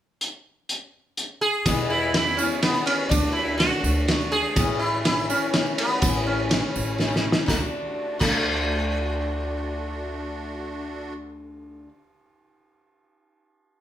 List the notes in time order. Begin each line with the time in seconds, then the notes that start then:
0.21 closed hi-hat
0.69 closed hi-hat
1.17 closed hi-hat
1.41 G#4
1.66 E2 B2 E3 G#3 B3 E4, kick, ride, tambourine
1.90 E4, tambourine
2.14 E3 G#3 B3 E4, snare, ride
2.26 tambourine
2.37 G#3 B3 C#4 E4, tambourine
2.43 E3
2.62 E3 G#3 B3 E4, snare, ride
2.75 tambourine
2.86 C#4, ride
3.09 D2 D3 A3 D4 F#4, kick, ride, tambourine
3.33 E4, tambourine
3.58 D3 A3 D4 F#4, snare, ride
3.63 F#4
3.72 tambourine
3.83 D2, tambourine
4.08 D3 A3 D4, snare, ride
4.12 F#4
4.21 tambourine
4.32 D4 F#4 G#4
4.36 A3
4.56 A1 A2 E3 A3 C#4 E4, kick, ride, tambourine
4.79 E4, tambourine
5.04 E3 A3 C#4 E4, snare, ride
5.18 tambourine
5.30 C#4, tambourine
5.54 E3 A3 C#4 E4, snare, ride
5.66 tambourine
5.78 B3, ride
6.02 A1 A2 E3 A3 C#4 E4, kick, ride, tambourine
6.26 C#4
6.49 E3 A3 C#4 E4, snare, ride
6.76 A1, tambourine
6.88 tambourine
6.98 E3 A3 C#4 E4, snare, tambourine
7.12 snare, tambourine
7.32 snare
7.46 D2 D3 A3 D4 F#4, kick, snare, tambourine
7.51 D4 F#4
8.19 D2 D3 A3, kick, crash, tambourine
8.25 D4 F#4